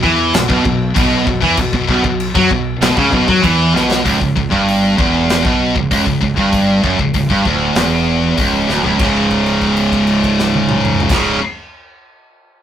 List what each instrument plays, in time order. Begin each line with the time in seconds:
0.03 fingered electric bass E2, distorted electric guitar E3, kick
0.33 fingered electric bass B1, distorted electric guitar B2, snare, crash
0.48 fingered electric bass B1, distorted electric guitar B2, kick
0.64 fingered electric bass B1, distorted electric guitar B2, kick
0.95 fingered electric bass B1, distorted electric guitar B2, kick, crash
1.26 fingered electric bass B1, distorted electric guitar B2, kick
1.42 fingered electric bass E2, distorted electric guitar E3, kick
1.57 fingered electric bass B1, distorted electric guitar B2, kick, crash
1.73 fingered electric bass B1, distorted electric guitar B2, kick
1.88 fingered electric bass B1, distorted electric guitar B2, kick
2.04 fingered electric bass B1, distorted electric guitar B2, kick
2.20 crash
2.35 fingered electric bass F#2, distorted electric guitar F#3, kick
2.51 fingered electric bass B1, distorted electric guitar B2, kick
2.81 fingered electric bass B1, distorted electric guitar B2, snare, crash
2.97 fingered electric bass C#2, distorted electric guitar C#3, kick
3.12 fingered electric bass B1, distorted electric guitar B2, kick
3.28 fingered electric bass F#2, distorted electric guitar F#3, kick
3.43 fingered electric bass E2, distorted electric guitar E3, kick, crash
3.74 fingered electric bass B1, distorted electric guitar B2, snare
3.91 snare
4.05 fingered electric bass C#1, distorted electric guitar C#2, kick, open hi-hat
4.20 fingered electric bass C#1, distorted electric guitar C#2, kick
4.36 fingered electric bass C#1, distorted electric guitar C#2, kick
4.51 fingered electric bass G1, distorted electric guitar G2, kick
4.69 open hi-hat
4.98 fingered electric bass E1, distorted electric guitar E2, kick
5.30 snare, open hi-hat
5.43 fingered electric bass B1, distorted electric guitar B2, kick
5.75 fingered electric bass C#1, distorted electric guitar C#2, kick
5.91 fingered electric bass C#1, distorted electric guitar C#2, kick, open hi-hat
6.06 fingered electric bass C#1, distorted electric guitar C#2, kick
6.21 fingered electric bass C#1, distorted electric guitar C#2, kick
6.37 fingered electric bass G1, distorted electric guitar G2, kick
6.53 kick, open hi-hat
6.83 fingered electric bass F#1, distorted electric guitar F#2, kick
6.99 fingered electric bass C#1, distorted electric guitar C#2, kick
7.14 fingered electric bass C#1, distorted electric guitar C#2, kick, open hi-hat
7.30 fingered electric bass G1, distorted electric guitar G2, kick
7.45 fingered electric bass D1, distorted electric guitar D2, kick
7.75 fingered electric bass E1, distorted electric guitar E2, snare, open hi-hat
8.38 fingered electric bass C#1, distorted electric guitar C#2, kick, open hi-hat
8.68 fingered electric bass D1, distorted electric guitar D2, snare
8.83 fingered electric bass C#1, distorted electric guitar C#2, floor tom
8.98 fingered electric bass C#1, distorted electric guitar C#2 G#2 C#3, kick, crash
9.31 kick, crash
9.46 crash
9.61 kick, crash
9.77 crash
9.92 kick, crash
10.07 crash
10.23 kick, crash
10.39 snare
10.54 high tom
10.69 mid tom
10.85 mid tom
11.00 floor tom
11.09 fingered electric bass C#1, distorted electric guitar C#2 G#2 C#3, kick, snare, crash